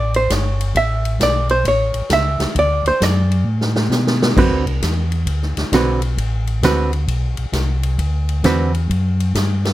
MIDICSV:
0, 0, Header, 1, 4, 480
1, 0, Start_track
1, 0, Tempo, 452830
1, 793, Time_signature, 4, 2, 24, 8
1, 10315, End_track
2, 0, Start_track
2, 0, Title_t, "Hollow-body jazz guitar"
2, 0, Program_c, 0, 26
2, 0, Note_on_c, 0, 74, 94
2, 158, Note_off_c, 0, 74, 0
2, 173, Note_on_c, 0, 72, 91
2, 336, Note_off_c, 0, 72, 0
2, 336, Note_on_c, 0, 73, 84
2, 804, Note_off_c, 0, 73, 0
2, 818, Note_on_c, 0, 76, 100
2, 1252, Note_off_c, 0, 76, 0
2, 1305, Note_on_c, 0, 74, 93
2, 1593, Note_off_c, 0, 74, 0
2, 1599, Note_on_c, 0, 72, 93
2, 1753, Note_off_c, 0, 72, 0
2, 1780, Note_on_c, 0, 73, 88
2, 2212, Note_off_c, 0, 73, 0
2, 2258, Note_on_c, 0, 76, 110
2, 2691, Note_off_c, 0, 76, 0
2, 2745, Note_on_c, 0, 74, 95
2, 3032, Note_off_c, 0, 74, 0
2, 3048, Note_on_c, 0, 72, 96
2, 3215, Note_off_c, 0, 72, 0
2, 3215, Note_on_c, 0, 74, 89
2, 3682, Note_off_c, 0, 74, 0
2, 4638, Note_on_c, 0, 50, 60
2, 4643, Note_on_c, 0, 60, 66
2, 4647, Note_on_c, 0, 66, 59
2, 4650, Note_on_c, 0, 71, 65
2, 4916, Note_off_c, 0, 50, 0
2, 4918, Note_off_c, 0, 60, 0
2, 4920, Note_off_c, 0, 66, 0
2, 4922, Note_off_c, 0, 71, 0
2, 6083, Note_on_c, 0, 50, 59
2, 6086, Note_on_c, 0, 60, 60
2, 6086, Note_on_c, 0, 66, 60
2, 6099, Note_on_c, 0, 71, 62
2, 6359, Note_off_c, 0, 50, 0
2, 6360, Note_off_c, 0, 60, 0
2, 6360, Note_off_c, 0, 66, 0
2, 6366, Note_off_c, 0, 71, 0
2, 7040, Note_on_c, 0, 50, 66
2, 7042, Note_on_c, 0, 60, 54
2, 7046, Note_on_c, 0, 66, 60
2, 7048, Note_on_c, 0, 71, 73
2, 7317, Note_off_c, 0, 50, 0
2, 7318, Note_off_c, 0, 60, 0
2, 7320, Note_off_c, 0, 66, 0
2, 7321, Note_off_c, 0, 71, 0
2, 8953, Note_on_c, 0, 50, 58
2, 8956, Note_on_c, 0, 60, 61
2, 8964, Note_on_c, 0, 66, 60
2, 8968, Note_on_c, 0, 71, 67
2, 9235, Note_off_c, 0, 50, 0
2, 9236, Note_off_c, 0, 60, 0
2, 9240, Note_off_c, 0, 66, 0
2, 9242, Note_off_c, 0, 71, 0
2, 10315, End_track
3, 0, Start_track
3, 0, Title_t, "Tonewheel organ"
3, 0, Program_c, 1, 16
3, 0, Note_on_c, 1, 33, 79
3, 298, Note_off_c, 1, 33, 0
3, 315, Note_on_c, 1, 31, 92
3, 779, Note_off_c, 1, 31, 0
3, 790, Note_on_c, 1, 33, 81
3, 1257, Note_off_c, 1, 33, 0
3, 1266, Note_on_c, 1, 35, 82
3, 1734, Note_off_c, 1, 35, 0
3, 1740, Note_on_c, 1, 33, 85
3, 2037, Note_off_c, 1, 33, 0
3, 2056, Note_on_c, 1, 33, 41
3, 2141, Note_off_c, 1, 33, 0
3, 2220, Note_on_c, 1, 37, 82
3, 2516, Note_off_c, 1, 37, 0
3, 2528, Note_on_c, 1, 37, 39
3, 2615, Note_off_c, 1, 37, 0
3, 2702, Note_on_c, 1, 38, 80
3, 2990, Note_off_c, 1, 38, 0
3, 3002, Note_on_c, 1, 38, 48
3, 3091, Note_off_c, 1, 38, 0
3, 3185, Note_on_c, 1, 42, 93
3, 3647, Note_on_c, 1, 45, 88
3, 3652, Note_off_c, 1, 42, 0
3, 4123, Note_off_c, 1, 45, 0
3, 4126, Note_on_c, 1, 47, 79
3, 4603, Note_off_c, 1, 47, 0
3, 4624, Note_on_c, 1, 42, 75
3, 4780, Note_on_c, 1, 38, 45
3, 4781, Note_off_c, 1, 42, 0
3, 4939, Note_on_c, 1, 36, 58
3, 4944, Note_off_c, 1, 38, 0
3, 5092, Note_off_c, 1, 36, 0
3, 5099, Note_on_c, 1, 40, 76
3, 5569, Note_off_c, 1, 40, 0
3, 5574, Note_on_c, 1, 38, 78
3, 5873, Note_off_c, 1, 38, 0
3, 5897, Note_on_c, 1, 38, 37
3, 5981, Note_off_c, 1, 38, 0
3, 6061, Note_on_c, 1, 35, 80
3, 6530, Note_off_c, 1, 35, 0
3, 6541, Note_on_c, 1, 33, 80
3, 7011, Note_off_c, 1, 33, 0
3, 7019, Note_on_c, 1, 38, 76
3, 7490, Note_off_c, 1, 38, 0
3, 7502, Note_on_c, 1, 35, 89
3, 7797, Note_off_c, 1, 35, 0
3, 7822, Note_on_c, 1, 35, 39
3, 7905, Note_off_c, 1, 35, 0
3, 7975, Note_on_c, 1, 36, 86
3, 8448, Note_off_c, 1, 36, 0
3, 8461, Note_on_c, 1, 38, 86
3, 8931, Note_off_c, 1, 38, 0
3, 8937, Note_on_c, 1, 40, 87
3, 9409, Note_off_c, 1, 40, 0
3, 9427, Note_on_c, 1, 42, 81
3, 9895, Note_off_c, 1, 42, 0
3, 9907, Note_on_c, 1, 43, 78
3, 10315, Note_off_c, 1, 43, 0
3, 10315, End_track
4, 0, Start_track
4, 0, Title_t, "Drums"
4, 151, Note_on_c, 9, 51, 56
4, 257, Note_off_c, 9, 51, 0
4, 318, Note_on_c, 9, 36, 18
4, 319, Note_on_c, 9, 38, 67
4, 321, Note_on_c, 9, 44, 67
4, 321, Note_on_c, 9, 51, 74
4, 424, Note_off_c, 9, 36, 0
4, 425, Note_off_c, 9, 38, 0
4, 427, Note_off_c, 9, 44, 0
4, 427, Note_off_c, 9, 51, 0
4, 642, Note_on_c, 9, 51, 55
4, 748, Note_off_c, 9, 51, 0
4, 794, Note_on_c, 9, 36, 25
4, 800, Note_on_c, 9, 51, 64
4, 900, Note_off_c, 9, 36, 0
4, 906, Note_off_c, 9, 51, 0
4, 1114, Note_on_c, 9, 51, 51
4, 1220, Note_off_c, 9, 51, 0
4, 1271, Note_on_c, 9, 36, 22
4, 1276, Note_on_c, 9, 38, 77
4, 1279, Note_on_c, 9, 44, 66
4, 1279, Note_on_c, 9, 51, 72
4, 1377, Note_off_c, 9, 36, 0
4, 1382, Note_off_c, 9, 38, 0
4, 1385, Note_off_c, 9, 44, 0
4, 1385, Note_off_c, 9, 51, 0
4, 1583, Note_on_c, 9, 51, 50
4, 1689, Note_off_c, 9, 51, 0
4, 1747, Note_on_c, 9, 36, 24
4, 1751, Note_on_c, 9, 51, 62
4, 1853, Note_off_c, 9, 36, 0
4, 1857, Note_off_c, 9, 51, 0
4, 2055, Note_on_c, 9, 51, 55
4, 2161, Note_off_c, 9, 51, 0
4, 2223, Note_on_c, 9, 38, 73
4, 2225, Note_on_c, 9, 44, 53
4, 2225, Note_on_c, 9, 51, 76
4, 2226, Note_on_c, 9, 36, 18
4, 2329, Note_off_c, 9, 38, 0
4, 2331, Note_off_c, 9, 44, 0
4, 2331, Note_off_c, 9, 51, 0
4, 2332, Note_off_c, 9, 36, 0
4, 2542, Note_on_c, 9, 38, 64
4, 2544, Note_on_c, 9, 51, 57
4, 2648, Note_off_c, 9, 38, 0
4, 2650, Note_off_c, 9, 51, 0
4, 2706, Note_on_c, 9, 36, 22
4, 2710, Note_on_c, 9, 51, 65
4, 2812, Note_off_c, 9, 36, 0
4, 2816, Note_off_c, 9, 51, 0
4, 3029, Note_on_c, 9, 51, 55
4, 3135, Note_off_c, 9, 51, 0
4, 3188, Note_on_c, 9, 36, 19
4, 3196, Note_on_c, 9, 38, 75
4, 3198, Note_on_c, 9, 44, 64
4, 3198, Note_on_c, 9, 51, 74
4, 3294, Note_off_c, 9, 36, 0
4, 3302, Note_off_c, 9, 38, 0
4, 3304, Note_off_c, 9, 44, 0
4, 3304, Note_off_c, 9, 51, 0
4, 3513, Note_on_c, 9, 51, 51
4, 3619, Note_off_c, 9, 51, 0
4, 3828, Note_on_c, 9, 38, 60
4, 3934, Note_off_c, 9, 38, 0
4, 3984, Note_on_c, 9, 38, 85
4, 4090, Note_off_c, 9, 38, 0
4, 4149, Note_on_c, 9, 38, 77
4, 4151, Note_on_c, 9, 44, 58
4, 4255, Note_off_c, 9, 38, 0
4, 4257, Note_off_c, 9, 44, 0
4, 4316, Note_on_c, 9, 38, 75
4, 4422, Note_off_c, 9, 38, 0
4, 4478, Note_on_c, 9, 38, 113
4, 4584, Note_off_c, 9, 38, 0
4, 4629, Note_on_c, 9, 36, 70
4, 4635, Note_on_c, 9, 49, 72
4, 4735, Note_off_c, 9, 36, 0
4, 4741, Note_off_c, 9, 49, 0
4, 4949, Note_on_c, 9, 51, 40
4, 5055, Note_off_c, 9, 51, 0
4, 5106, Note_on_c, 9, 36, 21
4, 5112, Note_on_c, 9, 38, 60
4, 5114, Note_on_c, 9, 44, 52
4, 5114, Note_on_c, 9, 51, 67
4, 5212, Note_off_c, 9, 36, 0
4, 5218, Note_off_c, 9, 38, 0
4, 5220, Note_off_c, 9, 44, 0
4, 5220, Note_off_c, 9, 51, 0
4, 5424, Note_on_c, 9, 51, 43
4, 5530, Note_off_c, 9, 51, 0
4, 5582, Note_on_c, 9, 36, 20
4, 5584, Note_on_c, 9, 51, 60
4, 5688, Note_off_c, 9, 36, 0
4, 5690, Note_off_c, 9, 51, 0
4, 5750, Note_on_c, 9, 38, 26
4, 5856, Note_off_c, 9, 38, 0
4, 5903, Note_on_c, 9, 51, 50
4, 5910, Note_on_c, 9, 38, 48
4, 6009, Note_off_c, 9, 51, 0
4, 6016, Note_off_c, 9, 38, 0
4, 6063, Note_on_c, 9, 36, 19
4, 6068, Note_on_c, 9, 38, 71
4, 6070, Note_on_c, 9, 44, 57
4, 6070, Note_on_c, 9, 51, 75
4, 6169, Note_off_c, 9, 36, 0
4, 6174, Note_off_c, 9, 38, 0
4, 6176, Note_off_c, 9, 44, 0
4, 6176, Note_off_c, 9, 51, 0
4, 6378, Note_on_c, 9, 51, 53
4, 6484, Note_off_c, 9, 51, 0
4, 6545, Note_on_c, 9, 36, 26
4, 6553, Note_on_c, 9, 51, 66
4, 6651, Note_off_c, 9, 36, 0
4, 6659, Note_off_c, 9, 51, 0
4, 6861, Note_on_c, 9, 51, 46
4, 6967, Note_off_c, 9, 51, 0
4, 7025, Note_on_c, 9, 36, 23
4, 7028, Note_on_c, 9, 38, 65
4, 7030, Note_on_c, 9, 44, 65
4, 7030, Note_on_c, 9, 51, 76
4, 7131, Note_off_c, 9, 36, 0
4, 7134, Note_off_c, 9, 38, 0
4, 7136, Note_off_c, 9, 44, 0
4, 7136, Note_off_c, 9, 51, 0
4, 7343, Note_on_c, 9, 51, 49
4, 7449, Note_off_c, 9, 51, 0
4, 7506, Note_on_c, 9, 36, 18
4, 7508, Note_on_c, 9, 51, 58
4, 7612, Note_off_c, 9, 36, 0
4, 7614, Note_off_c, 9, 51, 0
4, 7813, Note_on_c, 9, 51, 44
4, 7919, Note_off_c, 9, 51, 0
4, 7983, Note_on_c, 9, 38, 65
4, 7985, Note_on_c, 9, 36, 21
4, 7985, Note_on_c, 9, 44, 55
4, 7985, Note_on_c, 9, 51, 60
4, 8089, Note_off_c, 9, 38, 0
4, 8091, Note_off_c, 9, 36, 0
4, 8091, Note_off_c, 9, 44, 0
4, 8091, Note_off_c, 9, 51, 0
4, 8302, Note_on_c, 9, 51, 57
4, 8408, Note_off_c, 9, 51, 0
4, 8465, Note_on_c, 9, 36, 28
4, 8468, Note_on_c, 9, 51, 56
4, 8571, Note_off_c, 9, 36, 0
4, 8574, Note_off_c, 9, 51, 0
4, 8784, Note_on_c, 9, 51, 46
4, 8890, Note_off_c, 9, 51, 0
4, 8945, Note_on_c, 9, 38, 59
4, 8947, Note_on_c, 9, 36, 23
4, 8947, Note_on_c, 9, 44, 47
4, 8947, Note_on_c, 9, 51, 70
4, 9051, Note_off_c, 9, 38, 0
4, 9053, Note_off_c, 9, 36, 0
4, 9053, Note_off_c, 9, 44, 0
4, 9053, Note_off_c, 9, 51, 0
4, 9269, Note_on_c, 9, 51, 45
4, 9375, Note_off_c, 9, 51, 0
4, 9430, Note_on_c, 9, 36, 22
4, 9441, Note_on_c, 9, 51, 60
4, 9536, Note_off_c, 9, 36, 0
4, 9547, Note_off_c, 9, 51, 0
4, 9754, Note_on_c, 9, 51, 51
4, 9860, Note_off_c, 9, 51, 0
4, 9910, Note_on_c, 9, 36, 20
4, 9912, Note_on_c, 9, 38, 66
4, 9915, Note_on_c, 9, 44, 49
4, 9915, Note_on_c, 9, 51, 66
4, 10016, Note_off_c, 9, 36, 0
4, 10018, Note_off_c, 9, 38, 0
4, 10021, Note_off_c, 9, 44, 0
4, 10021, Note_off_c, 9, 51, 0
4, 10230, Note_on_c, 9, 38, 64
4, 10232, Note_on_c, 9, 51, 47
4, 10315, Note_off_c, 9, 38, 0
4, 10315, Note_off_c, 9, 51, 0
4, 10315, End_track
0, 0, End_of_file